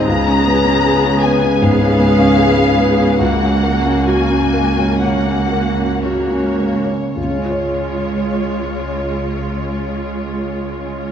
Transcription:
0.05 cello section C#2, grand piano C#2, viola section B3 G#4, violin section A#5
0.28 grand piano C#4
0.46 grand piano B3
0.66 grand piano C#4
0.86 grand piano G#4
1.05 grand piano C#4
1.22 violin section G#5
1.26 grand piano B3
1.44 grand piano C#4
1.61 grand piano G#2, viola section B3 G#4, violin section F5
1.81 grand piano C#4
1.99 grand piano B3
2.19 grand piano C#4
2.39 grand piano G#4
2.59 grand piano C#4
2.79 grand piano B3
2.99 grand piano C#4
3.20 grand piano C#2, viola section A#3 F#4, violin section F#5
3.42 grand piano C#4
3.63 grand piano A#3
3.86 grand piano C#4
4.07 grand piano F#4, violin section G#5
4.30 grand piano C#4
4.53 grand piano A#3
4.78 grand piano C#4
5.01 grand piano C#3, viola section A#3 F#4, violin section F#5
5.28 grand piano C#4
5.52 grand piano A#3
5.77 grand piano C#4
6.03 viola section A#3 F#4, grand piano F#4, violin section C#5
6.31 grand piano C#4
6.63 grand piano A#3
6.91 grand piano C#4
7.16 cello section C#2, grand piano C#2, viola section G#3 F4, violin section C#5
7.24 grand piano C#3
7.31 grand piano G#3
7.38 grand piano C#4
7.45 grand piano F4
7.51 grand piano C#5

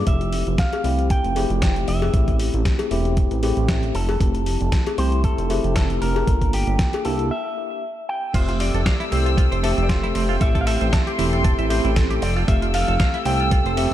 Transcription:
0.06 analog synth bass F1, tine electric piano A3 C4 E4 G4, clean electric guitar E5, kick, closed hi-hat
0.21 closed hi-hat
0.33 open hi-hat
0.47 analog synth bass F1, closed hi-hat
0.58 clean electric guitar F5, kick, snare, closed hi-hat
0.73 closed hi-hat, cowbell
0.84 analog synth bass C2, tine electric piano A3 C4 E4 G4, open hi-hat
0.99 closed hi-hat
1.10 clean electric guitar G5, kick, closed hi-hat
1.24 analog synth bass F1, closed hi-hat
1.35 tine electric piano A3 C4 E4 G4, open hi-hat, cowbell
1.50 analog synth bass F1, closed hi-hat
1.62 kick, snare, closed hi-hat
1.76 closed hi-hat
1.88 analog synth bass F1, clean electric guitar E5, open hi-hat
2.02 cowbell
2.12 analog synth bass A1, tine electric piano A3 C4 E4 G4, kick, closed hi-hat
2.28 kick, closed hi-hat
2.39 open hi-hat
2.54 analog synth bass A1, closed hi-hat
2.65 kick, snare, closed hi-hat
2.79 closed hi-hat, cowbell
2.91 analog synth bass E1, tine electric piano A3 C4 E4 G4, open hi-hat
3.05 closed hi-hat
3.17 kick, closed hi-hat
3.31 analog synth bass A1, closed hi-hat
3.43 tine electric piano A3 C4 E4 G4, open hi-hat, cowbell
3.57 analog synth bass A1, closed hi-hat
3.68 kick, snare, closed hi-hat
3.83 closed hi-hat
3.95 analog synth bass F1, clean electric guitar A4, open hi-hat
4.09 cowbell
4.19 analog synth bass F1, tine electric piano A3 C4 E4 G4, kick, closed hi-hat
4.35 closed hi-hat
4.46 open hi-hat
4.61 analog synth bass F1, closed hi-hat
4.72 kick, snare, closed hi-hat
4.86 closed hi-hat, cowbell
4.98 analog synth bass C2, tine electric piano A3 C4 E4 G4, clean electric guitar C5, open hi-hat
5.12 closed hi-hat
5.24 clean electric guitar A4, kick, closed hi-hat
5.38 analog synth bass F1, closed hi-hat
5.49 tine electric piano A3 C4 E4 G4, open hi-hat, cowbell
5.64 analog synth bass F1, closed hi-hat
5.76 clean electric guitar A4, kick, snare, closed hi-hat
5.90 closed hi-hat
6.02 analog synth bass F1, clean electric guitar A#4, open hi-hat
6.16 cowbell
6.27 analog synth bass G1, tine electric piano A#3 D4 F4 A4, kick, closed hi-hat
6.42 kick, closed hi-hat
6.53 clean electric guitar G4, open hi-hat
6.67 analog synth bass G1, closed hi-hat
6.79 kick, snare, closed hi-hat
6.93 closed hi-hat, cowbell
7.05 analog synth bass C2, tine electric piano A#3 D4 E4 G4, clean electric guitar A4, open hi-hat
7.19 closed hi-hat
7.31 clean electric guitar E5
8.09 clean electric guitar G5
8.33 analog synth bass F1, tine electric piano A3 C4 G4 E5, clean electric guitar F4 C5, string section A4 G5 E6, kick, closed hi-hat, ride, crash
8.49 clean electric guitar F4, closed hi-hat
8.60 clean electric guitar F4 D5, open hi-hat, ride
8.74 analog synth bass F1, clean electric guitar A4, closed hi-hat
8.86 clean electric guitar F5, kick, snare, closed hi-hat, ride
9.00 clean electric guitar E4, closed hi-hat
9.11 analog synth bass C2, tine electric piano A3 C4 G4, clean electric guitar C4 C5, open hi-hat, ride
9.26 clean electric guitar F4, closed hi-hat
9.37 clean electric guitar F4, kick, closed hi-hat, ride
9.52 analog synth bass F1, clean electric guitar C5, closed hi-hat
9.63 tine electric piano A3 C4 G4 E5, clean electric guitar A4, open hi-hat, ride
9.78 analog synth bass F1, clean electric guitar C4, closed hi-hat
9.83 clean electric guitar D5
9.89 clean electric guitar F4 C5, kick, snare, closed hi-hat, ride
10.03 clean electric guitar E4, closed hi-hat
10.15 analog synth bass F1, clean electric guitar C4, open hi-hat, ride
10.29 clean electric guitar F4
10.40 analog synth bass A1, tine electric piano A3 C4 E4 G4, clean electric guitar A4 E5, string section C6, kick, closed hi-hat, ride
10.55 clean electric guitar A4, kick, closed hi-hat
10.61 clean electric guitar F5
10.67 clean electric guitar A4 E5, open hi-hat, ride
10.81 analog synth bass A1, clean electric guitar C5, closed hi-hat
10.93 clean electric guitar A5, kick, snare, closed hi-hat, ride
11.07 clean electric guitar G4, closed hi-hat
11.18 analog synth bass E1, tine electric piano A3 C4 E4 G4, clean electric guitar E4, open hi-hat, ride
11.33 clean electric guitar A4, closed hi-hat
11.44 clean electric guitar A4, kick, closed hi-hat, ride
11.59 analog synth bass A1, clean electric guitar E5, closed hi-hat
11.70 tine electric piano A3 C4 E4 G4, clean electric guitar C5, open hi-hat, ride
11.85 analog synth bass A1, clean electric guitar E4, closed hi-hat
11.96 clean electric guitar A4, kick, snare, closed hi-hat, ride
12.10 clean electric guitar G4, closed hi-hat
12.22 analog synth bass F1, clean electric guitar C4 D5, string section E6, open hi-hat, ride
12.37 clean electric guitar F4
12.47 analog synth bass F1, tine electric piano A3 C4 G4 F5, clean electric guitar F4 E5, kick, closed hi-hat, ride
12.62 clean electric guitar F4, closed hi-hat
12.74 clean electric guitar F4 F5, open hi-hat, ride
12.88 analog synth bass F1, clean electric guitar A4, closed hi-hat
13.00 clean electric guitar F5, kick, snare, closed hi-hat, ride
13.14 clean electric guitar E4, closed hi-hat
13.25 analog synth bass C2, tine electric piano A3 C4 G4, clean electric guitar C4 G5, open hi-hat, ride
13.40 clean electric guitar F4, closed hi-hat
13.51 clean electric guitar F4, kick, closed hi-hat, ride
13.66 analog synth bass F1, clean electric guitar C5, closed hi-hat
13.76 tine electric piano A3 C4 G4 E5, clean electric guitar A4, open hi-hat, ride

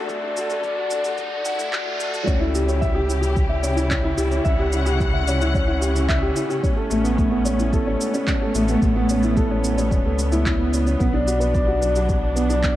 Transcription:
Already playing: string section D2 D3 F#4 A4, grand piano A3 D4 F#4 A4 D5, riser
0.09 grand piano A3, kick, shaker
0.23 grand piano D4
0.37 grand piano F#4, shaker
0.50 grand piano A4, shaker
0.64 grand piano D5, kick, shaker
0.78 grand piano F#4
0.91 grand piano D4, shaker
1.04 grand piano F#4, shaker
1.18 grand piano F#4, kick, shaker
1.31 grand piano D5
1.45 grand piano F#5, shaker
1.59 grand piano A3, shaker
1.72 grand piano F#4, kick, clap, shaker
1.85 grand piano A3
1.99 grand piano A4, shaker
2.12 grand piano A4, shaker
2.26 analog synth bass C#2, string section C#3 C#4 E4 G4, grand piano C#4, kick, shaker
2.40 grand piano E4
2.54 grand piano G4, shaker
2.68 grand piano C#5, shaker
2.81 grand piano E5, kick, shaker
2.95 grand piano G4
3.08 grand piano E4, shaker
3.21 grand piano G4, shaker
3.35 grand piano G4, kick, shaker
3.49 grand piano E5
3.63 grand piano C#4, shaker
3.76 grand piano E4, shaker
3.90 grand piano C#4, kick, clap, shaker
4.04 grand piano E4
4.17 analog synth bass C#2, grand piano G4, shaker
4.31 grand piano C#5, shaker
4.45 analog synth bass C#2, grand piano E5, string section F#5, kick, shaker
4.59 grand piano G4
4.72 grand piano E4, shaker
4.86 grand piano G4, shaker
5.00 grand piano G4, kick, shaker
5.13 grand piano E5
5.27 grand piano C#4, shaker
5.41 grand piano E4, shaker
5.54 grand piano C#4, kick, shaker
5.67 grand piano E4
5.81 grand piano G4, shaker
5.95 grand piano C#5, shaker
6.09 grand piano E5, kick, clap, shaker
6.22 grand piano G4
6.35 grand piano E4, shaker
6.49 grand piano G4, shaker
6.63 string section A3 B3, grand piano C#4, kick, shaker
6.76 grand piano A4
6.90 analog synth bass A1, grand piano A3, shaker
7.04 grand piano B3, shaker
7.17 grand piano A3, kick, shaker
7.31 grand piano B3
7.45 grand piano C#4, shaker
7.59 grand piano E4, shaker
7.73 grand piano A4, kick, shaker
7.86 grand piano C#4
8.00 grand piano B3, shaker
8.14 grand piano C#4, shaker
8.27 grand piano C#4, kick, clap, shaker
8.41 grand piano A4
8.55 analog synth bass A1, grand piano A3, shaker
8.68 grand piano B3, shaker
8.82 analog synth bass A1, grand piano A3, kick, shaker
8.96 grand piano B3
9.09 grand piano C#4, shaker
9.23 grand piano E4, shaker
9.37 grand piano A4, kick, shaker
9.50 grand piano C#4
9.63 grand piano B3, shaker
9.77 grand piano C#4, shaker
9.91 analog synth bass E1, grand piano C#4, kick, shaker
10.05 analog synth bass C#2, grand piano A4
10.18 grand piano C#4, shaker
10.32 grand piano E4, shaker
10.46 grand piano E4, kick, clap, shaker
10.59 grand piano B3
10.72 grand piano C#4, shaker
10.86 grand piano C#4, shaker
10.99 analog synth bass B1, string section F#3 D4, grand piano B3, kick, shaker
11.13 grand piano D4
11.27 grand piano F#4, shaker
11.40 grand piano B4, shaker
11.54 grand piano D5, kick, shaker
11.67 grand piano F#4
11.81 grand piano D4, shaker
11.95 grand piano F#4, shaker
12.09 grand piano F#4, kick, shaker
12.22 grand piano D5
12.36 grand piano B3, shaker
12.49 grand piano D4, shaker
12.63 grand piano B3, kick, clap, shaker

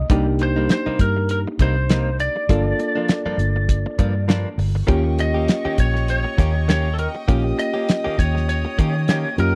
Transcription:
0.10 fingered electric bass C2, clean electric guitar C3 G3 A#3 D#4, reed electric piano A#3 D4 D#4 G4, kick, closed hi-hat
0.27 muted clean electric guitar stroke
0.39 lead electric guitar C5, muted clean electric guitar stroke, closed hi-hat
0.56 clean electric guitar G3 A#3 D#4
0.69 lead electric guitar C5, snare, closed hi-hat
0.86 clean electric guitar C3 G3 A#3 D#4, muted fingered electric bass stroke
0.99 fingered electric bass G2, lead electric guitar A#4, muted clean electric guitar stroke, kick, closed hi-hat
1.17 muted clean electric guitar stroke
1.29 lead electric guitar A#4, closed hi-hat
1.48 muted clean electric guitar stroke
1.59 fingered electric bass C2, clean electric guitar C3 G3 A#3 D#4, lead electric guitar C5, kick, closed hi-hat
1.90 clean electric guitar C3 G3 A#3 D#4, snare, closed hi-hat
2.19 lead electric guitar D5, muted clean electric guitar stroke, closed hi-hat
2.36 muted clean electric guitar stroke
2.49 fingered electric bass G1, clean electric guitar G2 F3 A#3 D4, reed electric piano A#3 D4 F4 A4, kick, closed hi-hat
2.66 muted clean electric guitar stroke
2.79 muted clean electric guitar stroke, closed hi-hat
2.95 clean electric guitar F3 A#3 D4
3.08 snare, closed hi-hat
3.25 clean electric guitar G2 F3 A#3 D4, muted fingered electric bass stroke
3.38 fingered electric bass G1, muted clean electric guitar stroke, closed hi-hat
3.56 muted clean electric guitar stroke
3.69 kick, closed hi-hat
3.86 muted clean electric guitar stroke
3.99 clean electric guitar G2 F3 A#3 D4, fingered electric bass G2, kick, closed hi-hat
4.15 muted clean electric guitar stroke
4.28 clean electric guitar G2 F3 A#3 D4, snare, closed hi-hat
4.58 fingered electric bass G1, muted clean electric guitar stroke, open hi-hat
4.75 muted clean electric guitar stroke
4.87 fingered electric bass D#2, clean electric guitar D#3 A#3 C#4 G4, reed electric piano A#3 C#4 F4 G4, string section D#5 G5 C#6, kick, closed hi-hat
5.04 muted clean electric guitar stroke
5.19 lead electric guitar D#5, muted clean electric guitar stroke, closed hi-hat
5.34 clean electric guitar A#3 C#4 G4
5.48 snare, closed hi-hat
5.65 clean electric guitar D#3 A#3 C#4 G4, muted fingered electric bass stroke
5.78 fingered electric bass A#1, lead electric guitar C#5, kick, closed hi-hat
5.94 muted clean electric guitar stroke, snare
6.08 lead electric guitar C#5, closed hi-hat
6.24 muted clean electric guitar stroke
6.38 fingered electric bass D#2, clean electric guitar D#3 A#3 C#4 G4, kick, snare, closed hi-hat
6.55 muted clean electric guitar stroke
6.68 clean electric guitar D#3 A#3 C#4 G4, lead electric guitar C#5, snare, closed hi-hat
6.94 lead electric guitar A4
6.99 lead electric guitar A#4, muted clean electric guitar stroke, closed hi-hat
7.15 muted clean electric guitar stroke
7.28 fingered electric bass A#1, clean electric guitar D#3 A#3 C#4 G4, reed electric piano A#3 C#4 F4 G4, string section D#6, kick, closed hi-hat
7.45 muted clean electric guitar stroke
7.58 lead electric guitar D#5, muted clean electric guitar stroke, closed hi-hat
7.74 clean electric guitar A#3 C#4 G4
7.89 snare, closed hi-hat
8.04 clean electric guitar D#3 A#3 C#4 G4, muted fingered electric bass stroke
8.18 fingered electric bass D#2, lead electric guitar C#5, muted clean electric guitar stroke, kick, closed hi-hat
8.35 muted clean electric guitar stroke, snare
8.49 lead electric guitar C#5, closed hi-hat
8.65 muted clean electric guitar stroke
8.78 clean electric guitar D#3 A#3 C#4 G4, fingered electric bass D#3, kick, closed hi-hat
8.95 muted clean electric guitar stroke
9.08 clean electric guitar D#3 A#3 C#4 G4, snare, closed hi-hat
9.38 fingered electric bass F#2, reed electric piano A#3 C#4 F4 G4, lead electric guitar A#4, muted clean electric guitar stroke, closed hi-hat

